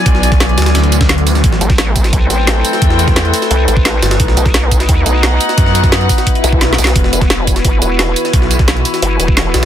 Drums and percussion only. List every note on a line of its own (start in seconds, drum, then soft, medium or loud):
0.06 kick loud
0.06 closed hi-hat medium
0.15 snare soft
0.23 closed hi-hat medium
0.23 tambourine medium
0.32 kick loud
0.32 snare soft
0.32 closed hi-hat soft
0.40 snare loud
0.40 closed hi-hat medium
0.49 closed hi-hat soft
0.58 snare medium
0.58 closed hi-hat medium
0.58 open hi-hat medium
0.58 tambourine medium
0.62 snare medium
0.62 closed hi-hat medium
0.66 snare loud
0.66 closed hi-hat soft
0.66 closed hi-hat medium
0.66 tambourine soft
0.75 snare loud
0.75 closed hi-hat medium
0.83 closed hi-hat soft
0.92 closed hi-hat medium
0.92 tambourine medium
1.01 kick loud
1.01 snare loud
1.01 closed hi-hat medium
1.09 snare loud
1.09 closed hi-hat medium
1.09 closed hi-hat soft
1.18 closed hi-hat medium
1.27 closed hi-hat medium
1.27 open hi-hat medium
1.27 tambourine medium
1.35 snare medium
1.35 tambourine soft
1.44 kick loud
1.44 closed hi-hat medium
1.53 snare medium
1.61 closed hi-hat medium
1.61 tambourine medium
1.70 kick loud
1.70 snare soft
1.70 closed hi-hat soft
1.78 snare loud
1.78 closed hi-hat medium
1.96 kick medium
1.96 closed hi-hat medium
1.96 tambourine medium
2.04 snare medium
2.04 closed hi-hat soft
2.04 tambourine soft
2.13 kick loud
2.13 closed hi-hat medium
2.30 closed hi-hat medium
2.30 tambourine medium
2.47 snare loud
2.47 closed hi-hat medium
2.65 closed hi-hat medium
2.65 tambourine medium
2.73 snare medium
2.73 tambourine soft
2.82 kick loud
2.82 closed hi-hat medium
2.90 snare soft
2.99 closed hi-hat medium
2.99 tambourine medium
3.08 kick loud
3.08 snare soft
3.08 closed hi-hat soft
3.16 snare loud
3.16 closed hi-hat medium
3.25 closed hi-hat soft
3.34 closed hi-hat medium
3.34 open hi-hat medium
3.34 tambourine medium
3.42 snare soft
3.42 closed hi-hat soft
3.42 tambourine soft
3.51 closed hi-hat medium
3.68 closed hi-hat medium
3.68 tambourine medium
3.77 kick loud
3.85 snare loud
3.85 closed hi-hat medium
4.02 snare loud
4.02 closed hi-hat medium
4.02 tambourine medium
4.11 snare loud
4.11 closed hi-hat medium
4.11 tambourine soft
4.20 kick loud
4.20 closed hi-hat medium
4.28 snare medium
4.37 closed hi-hat medium
4.37 tambourine medium
4.46 kick loud
4.46 snare soft
4.46 closed hi-hat soft
4.54 snare loud
4.54 closed hi-hat medium
4.71 kick medium
4.71 closed hi-hat medium
4.71 tambourine medium
4.80 snare medium
4.80 closed hi-hat soft
4.80 tambourine soft
4.89 kick loud
4.89 closed hi-hat loud
4.89 closed hi-hat medium
5.06 closed hi-hat medium
5.06 tambourine medium
5.23 snare loud
5.23 closed hi-hat medium
5.41 closed hi-hat medium
5.41 tambourine medium
5.49 snare medium
5.49 tambourine soft
5.58 kick loud
5.58 closed hi-hat medium
5.66 snare soft
5.75 closed hi-hat medium
5.75 tambourine medium
5.84 kick loud
5.84 snare soft
5.84 closed hi-hat soft
5.84 tambourine soft
5.92 snare loud
5.92 closed hi-hat loud
5.92 closed hi-hat medium
6.01 closed hi-hat soft
6.09 kick medium
6.09 closed hi-hat medium
6.09 open hi-hat medium
6.09 tambourine medium
6.18 snare soft
6.18 closed hi-hat soft
6.18 tambourine soft
6.27 kick medium
6.27 closed hi-hat medium
6.27 closed hi-hat loud
6.35 closed hi-hat soft
6.44 closed hi-hat medium
6.44 tambourine medium
6.53 kick loud
6.61 snare loud
6.61 snare medium
6.61 closed hi-hat medium
6.61 closed hi-hat loud
6.73 snare medium
6.78 closed hi-hat medium
6.78 open hi-hat medium
6.78 tambourine medium
6.84 snare loud
6.87 snare loud
6.87 closed hi-hat medium
6.87 tambourine soft
6.96 kick loud
6.96 closed hi-hat loud
6.96 closed hi-hat medium
7.04 snare medium
7.13 closed hi-hat medium
7.13 tambourine medium
7.21 kick loud
7.21 snare soft
7.21 closed hi-hat soft
7.30 snare loud
7.30 closed hi-hat loud
7.30 closed hi-hat medium
7.47 kick medium
7.47 closed hi-hat medium
7.47 tambourine medium
7.56 snare medium
7.56 closed hi-hat soft
7.56 tambourine soft
7.65 kick loud
7.65 closed hi-hat loud
7.65 closed hi-hat medium
7.82 closed hi-hat medium
7.82 tambourine medium
7.99 snare loud
7.99 closed hi-hat loud
7.99 closed hi-hat medium
8.16 closed hi-hat medium
8.16 tambourine medium
8.25 snare medium
8.25 tambourine soft
8.33 kick loud
8.33 closed hi-hat loud
8.33 closed hi-hat medium
8.42 snare soft
8.51 closed hi-hat medium
8.51 tambourine medium
8.59 kick loud
8.59 snare soft
8.59 closed hi-hat soft
8.68 snare loud
8.68 closed hi-hat medium
8.68 closed hi-hat loud
8.76 closed hi-hat soft
8.85 closed hi-hat medium
8.85 open hi-hat medium
8.85 tambourine medium
8.94 snare soft
8.94 closed hi-hat soft
8.94 tambourine soft
9.02 closed hi-hat medium
9.02 closed hi-hat loud
9.20 closed hi-hat medium
9.20 tambourine medium
9.28 kick loud
9.37 snare loud
9.37 closed hi-hat medium
9.37 closed hi-hat loud
9.54 snare loud
9.54 closed hi-hat medium
9.54 tambourine medium